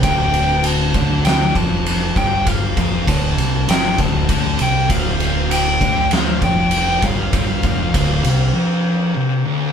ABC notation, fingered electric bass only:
X:1
M:4/4
L:1/8
Q:1/4=99
K:Dm
V:1 name="Fingered electric bass" clef=bass
D,,,3 D,,2 F,,,2 G,,,- | G,,, F,,, D,,, C,, G,,, D,,, D,, C,, | D,,,3 D,,2 F,,,2 G,,,- | G,,, F,,, D,,, C,, z4 |]